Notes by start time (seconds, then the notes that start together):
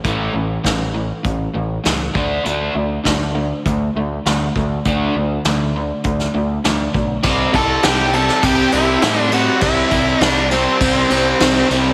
0.04 A1 A2 E3 A3, kick, closed hi-hat
0.33 A1 A2 E3
0.64 A1 A2 E3, kick, snare, closed hi-hat
0.94 A2 E3
1.24 A1 A2 E3, kick, closed hi-hat
1.54 A1 A2 E3
1.84 C#2 A2 E3, snare, closed hi-hat
2.14 D2 D3 A3 D4, kick
2.44 D2 D3 A3 D4, closed hi-hat
2.74 D2 D3 A3
3.04 D2 D3 A3, kick, snare, closed hi-hat
3.35 D3 A3
3.66 D2 D3 A3, kick, closed hi-hat
3.95 D2 D3 A3
4.26 D2 D3 A3, snare, closed hi-hat
4.56 D2 D3 A3, kick
4.85 D2 D3 A3 D4, kick, closed hi-hat
5.15 D2 D3 A3
5.44 D2 D3 A3, snare, closed hi-hat
5.76 D3 A3
6.04 D2 D3 A3, kick, closed hi-hat
6.19 snare
6.34 D2 D3 A3
6.64 D2 D3 A3, snare, closed hi-hat
6.94 B1 D3 A3, kick
7.23 C2 C3 G3 C4, kick, crash
7.52 C2 C3 G3 C4 A4, kick, ride
7.83 C2 C3 G3 C4 G4, snare, ride
8.12 C3 G3 C4 A4, ride
8.28 snare
8.42 C2 C3 G3 C4 G4, kick, ride
8.72 C2 C3 G3 C4 E4, ride
9.02 A2 C3 G3 C4, snare, ride
9.20 D4
9.32 C3 G3 C4 F#4, ride
9.61 C2 C3 G3 C4 E4, kick, ride
9.91 C2 C3 G3 C4, kick, ride
10.21 C2 C3 G3 C4 D4, snare, ride
10.51 C3 G3 C4, ride
10.80 C2 C3 G3 C4, kick, ride
11.10 C2 C3 G3 C4, ride
11.39 C2 C3 G3 C4, snare, ride
11.70 C2 C3 G3 C4, ride